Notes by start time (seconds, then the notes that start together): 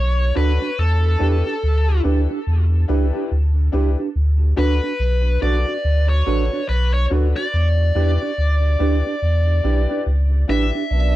Already playing: B1 C#5
0.35 D2 D4 F#4 A4 B4
0.60 D4 F#4 B4
0.79 E2 A4
1.19 E2 D4 E4 G4 B4
1.45 D4 G4 B4
1.63 D2
2.03 D2 D4 E4 G4 B4
2.29 D4 G4 B4
2.47 E2
2.88 C#2 D4 E4 G4 B4
3.13 D4 E4 G4 B4
3.32 D2
3.72 C#2 D4 E4 G4 B4
3.98 D4 G4 B4
4.16 D2
4.56 D2 D4 F#4 A4 B4
4.82 D4 F#4 B4
5.00 B1
5.41 B1 D4 F#4 A4 B4 D5
5.67 D4 F#4 B4
5.85 D2
6.09 C#5
6.26 A1 D4 F#4 A4 B4
6.52 D4 F#4 A4 B4
6.69 B1 B4
6.94 C#5
7.10 D2 D4 F#4 A4 B4
7.36 D4 F#4 B4 D5
7.54 E2
7.95 E2 D4 E4 G4 B4
8.21 D4 G4 B4
8.38 D2
8.79 D2 D4 E4 G4 B4
9.05 D4 G4 B4
9.22 E2
9.63 B1 D4 E4 G4 B4
9.88 D4 E4 G4 B4
10.06 C#2
10.48 A1 D4 E4 G4 B4 E5
10.74 D4 G4 B4
10.91 B1 F#2 B3 D4